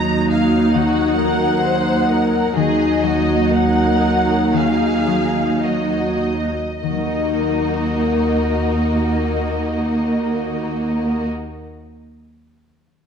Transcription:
Already playing: D#2 D#3 F#3 D#4 A#4 A#5
0.30 D#5 F5
0.74 D#3 F#4 F#5
1.18 F#3 A#4
1.62 A#4 C5
2.09 A#4 D#5
2.55 D#2 D#3 F#3 D#4 G#4 D#5
3.03 F#3 F#4
3.50 A#4 F#5
4.00 D#5
4.53 D#3 G#4 F5
5.07 F#3
5.63 F#4 A#4 D#5
6.22 D#5
6.83 D#2 D#3 A#3 D#4 F#4 A#4 D#5
6.90 F#3
6.97 D#4
7.04 A#4
7.11 D#5

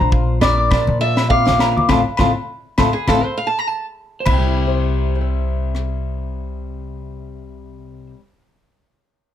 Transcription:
Already playing: A#2 D4 C5
0.01 A#1
0.11 F4, kick
0.41 A#4 D5 D6, snare, low conga, low agogo
0.58 D6
0.71 A#2 F3 D5, kick, snare, low agogo
0.87 A#2, high conga
1.01 F4 D5 E5
1.17 snare, low agogo
1.30 C4 F5 D6, kick
1.45 A#1 D4 D6, snare, high conga
1.59 A#3 A#5, snare, low agogo
1.77 D6, high conga
1.89 A1 A3 C4 F4 F5 A5 C6, kick, snare, high conga, low agogo
2.17 A1 A3 C4 F4 F5 A5 C6, kick, snare, high conga, low agogo
2.78 A1 A3 C4 F4 F5 A5 C6, kick, snare, high conga, low agogo
2.93 G#4
3.08 A1 A3 C4 F4 A4 F5 A5 C6, kick, snare, high conga, low agogo
3.24 C5
3.37 F5
3.47 A5
3.59 A#5
3.67 A5
4.20 C5
4.26 C2 C3 E5, kick, crash, high conga, low agogo
4.33 G5
4.37 G3
4.47 E4
4.57 G4
4.67 C5
5.15 C5
5.21 E5
5.75 cross-stick

